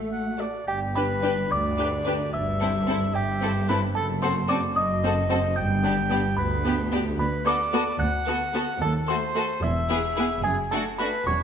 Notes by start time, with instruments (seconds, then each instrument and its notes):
Already playing: double bass section A1, cello section A3, french horn section F#4 A4
0.12 oboe F#5
0.40 viola section F#4, violin section A4 D5, oboe D5
0.67 double bass section G1, cello section G2, oboe G4, music box G5
0.95 viola section D4, violin section G4 B4, oboe B4, music box B5
1.23 viola section D4, violin section G4 B4
1.51 cello section D2, double bass section D2, oboe D5, music box D6
1.79 viola section D4, violin section G4 B4
2.06 viola section D4, violin section G4 B4
2.33 double bass section G1, cello section G2, oboe E5, music box E6
2.61 viola section C4, violin section E4 A4
2.88 viola section C4, violin section E4 A4
3.14 double bass section G1, cello section G2, oboe G4, music box G5
3.42 viola section C4, violin section E4 A4
3.69 viola section C4, violin section E4 A4, oboe B4, music box B5
3.95 double bass section F#1, cello section F#2, oboe A4, music box A5
4.22 viola section C4, violin section F#4 A4, oboe C5, music box C6
4.48 viola section C4, violin section F#4 A4, oboe D5, music box D6
4.76 double bass section F#1, cello section F#2, oboe D#5, music box D#6
5.04 viola section C4, violin section F#4 A4
5.30 viola section C4, violin section F#4 A4
5.56 double bass section G1, cello section G2, oboe G5, music box G6
5.83 viola section B3, violin section D4 G4
6.10 viola section B3, violin section D4 G4
6.37 double bass section D2, cello section D2, oboe B4, music box B5
6.65 viola section B3, violin section D4 G4
6.91 viola section B3, violin section D4 G4
7.18 double bass section D2, cello section D2, oboe B4, music box B5
7.45 viola section B3, violin section F#4 A4, oboe D5, music box D6
7.73 viola section B3, violin section F#4 A4
7.99 double bass section D2, cello section D2, oboe F#5, music box F#6
8.27 viola section B3, violin section F#4 A4
8.54 viola section B3, violin section F#4 A4
8.80 double bass section D#2, cello section D#2, oboe A4, music box A5
9.08 viola section A3, violin section F#4 A4, oboe C5, music box C6
9.35 viola section A3, violin section F#4 A4
9.63 double bass section E1, cello section E2, oboe E5, music box E6
9.89 viola section B3, violin section E4 G#4
10.16 viola section B3, violin section E4 G#4
10.44 double bass section F#1, cello section F#2, oboe G#4, music box G#5
10.71 viola section A3, violin section D4 F#4, oboe A4, music box A5
10.98 viola section A3, violin section D4 F#4, oboe B4, music box B5
11.27 double bass section E1, cello section E2, oboe C#5, music box C#6